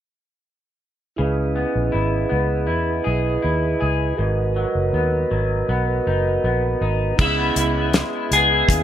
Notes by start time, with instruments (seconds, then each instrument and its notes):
1.16 fingered electric bass C#2, clean electric guitar C#3, tonewheel organ E4 G#4 B4
1.21 tonewheel organ D#5
1.56 clean electric guitar B3
1.76 fingered electric bass A#1
1.92 fingered electric bass G#1, clean electric guitar E4
2.29 fingered electric bass C#2, clean electric guitar B3
2.67 fingered electric bass E2, clean electric guitar E4
3.04 fingered electric bass B1, clean electric guitar G#4
3.42 fingered electric bass D#2, clean electric guitar E4
3.80 fingered electric bass C#2, clean electric guitar G#4
4.16 fingered electric bass G#1, clean electric guitar G#2, tonewheel organ F#4 A#4 B4
4.21 tonewheel organ D#5
4.56 clean electric guitar F#3
4.75 fingered electric bass F#1
4.93 fingered electric bass D#2, clean electric guitar B3
5.31 fingered electric bass G#1, clean electric guitar F#3
5.69 fingered electric bass B1, clean electric guitar B3
6.07 fingered electric bass F#1, clean electric guitar D#4
6.44 fingered electric bass A#1, clean electric guitar B3
6.81 fingered electric bass G#1, clean electric guitar D#4
7.17 fingered electric bass C#2, clean electric guitar C#3, tonewheel organ B3 E4 G#4, kick, crash
7.21 electric slide guitar E4, tonewheel organ D#5
7.38 clean electric guitar B3
7.56 fingered electric bass C#2, clean electric guitar E4, closed hi-hat
7.77 clean electric guitar B3
7.94 clean electric guitar G#3, snare, closed hi-hat
8.14 clean electric guitar E4
8.31 fingered electric bass C#2, clean electric guitar B3, electric slide guitar G#4, closed hi-hat
8.51 clean electric guitar E4
8.69 fingered electric bass D#2, clean electric guitar C#3, kick, closed hi-hat